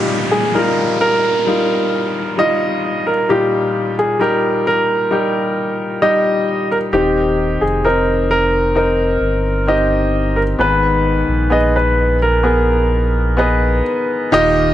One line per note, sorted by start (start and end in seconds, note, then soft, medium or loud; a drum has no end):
0.00 0.96 A#2 soft
0.00 0.49 G3 medium
0.00 0.49 D#4 medium
0.00 0.50 F4 medium
0.00 0.34 G4 medium
0.00 downlifter medium
0.31 0.55 G#4 medium
0.54 1.42 G3 medium
0.54 1.42 D#4 soft
0.54 1.43 F4 medium
0.54 0.97 A#4 medium
1.01 2.34 A#4 medium
1.47 2.34 G3 medium
1.47 2.34 D#4 soft
1.47 2.34 F4 medium
2.37 3.25 G3 medium
2.37 3.25 D#4 medium
2.37 3.25 F4 medium
2.37 3.09 D#5 medium
3.07 3.30 A#4 medium
3.29 4.62 A#2 soft
3.29 4.16 G3 medium
3.29 4.16 D#4 medium
3.29 4.16 F4 medium
3.29 3.94 G4 medium
3.99 4.19 G#4 medium
4.19 5.06 G3 medium
4.19 5.07 D#4 medium
4.19 5.07 G4 medium
4.19 4.66 A#4 medium
4.67 5.98 A#4 medium
5.11 5.97 G3 medium
5.11 5.97 D#4 medium
5.11 5.98 G4 medium
6.02 6.88 G3 medium
6.02 6.89 D#4 medium
6.02 6.89 G4 medium
6.02 6.66 D#5 medium
6.71 6.76 A#4 medium
6.93 7.57 D#1 medium
6.93 8.26 D#3 medium
6.93 7.79 C4 medium
6.93 7.80 D#4 medium
6.93 7.63 G4 medium
6.93 7.80 G4 medium
7.61 9.17 F1 medium
7.61 7.85 G#4 medium
7.84 8.71 C4 medium
7.84 8.71 D#4 medium
7.84 8.29 A#4 medium
7.84 8.71 A#4 medium
8.31 9.72 A#4 medium
8.75 9.62 C4 medium
8.75 9.63 D#4 medium
8.75 9.63 A#4 medium
9.21 10.55 G1 medium
9.67 10.55 C4 medium
9.67 10.55 D#4 soft
9.67 10.55 G4 medium
9.67 10.39 D#5 medium
10.36 10.41 A#4 medium
10.59 11.24 G#1 medium
10.59 11.93 G#2 soft
10.59 11.94 D#3 soft
10.59 11.46 B3 medium
10.59 11.47 G#4 medium
10.59 11.47 B4 medium
10.59 11.55 B4 medium
11.29 13.82 A#1 medium
11.50 12.39 B3 medium
11.50 12.39 G#4 medium
11.50 12.39 B4 medium
11.50 11.75 D#5 medium
11.76 12.18 B4 medium
12.22 13.83 A#4 medium
12.43 13.33 B3 medium
12.43 13.33 G#4 medium
12.43 13.34 A#4 medium
13.37 14.27 B3 medium
13.37 14.27 G#4 medium
13.37 14.36 B4 medium
13.37 14.28 D#5 medium
14.32 14.74 D#1 loud
14.32 14.74 A#2 medium
14.32 14.74 D#3 medium
14.32 14.74 D#4 loud
14.32 14.74 F4 medium
14.32 14.74 G4 loud
14.32 14.74 D#5 loud